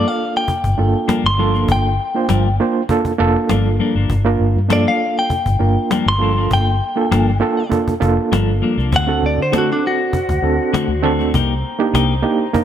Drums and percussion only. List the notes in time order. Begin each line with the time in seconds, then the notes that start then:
0.48 cajon bass
0.64 cajon bass
1.09 cajon slap
1.55 cajon slap
1.68 cajon bass
2.29 cajon slap
2.89 cajon bass
3.05 cajon bass
3.49 cajon slap
4.10 cajon bass
4.70 cajon slap
5.30 cajon bass
5.46 cajon bass
5.91 cajon slap
6.51 cajon bass
7.12 cajon slap
7.72 cajon bass
7.88 cajon bass
8.02 cajon bass
8.33 cajon slap
8.79 cajon slap
8.93 cajon bass
9.53 cajon slap
10.13 cajon bass
10.29 cajon bass
10.74 cajon slap
11.20 cajon slap
11.34 cajon bass
11.95 cajon slap
12.54 cajon bass